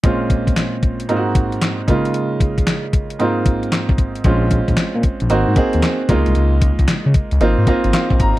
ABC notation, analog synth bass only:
X:1
M:4/4
L:1/16
Q:"Swing 16ths" 1/4=114
K:Bbm
V:1 name="Analog synth bass" clef=bass
z16 | z16 | B,,,3 B,,, B,, B,, z B,,, A,,, A,, z E,, z2 D,, C,, | D,,3 D,, D, D, z D,, A,,, A,, z A,,, z B,,, A,,, z |]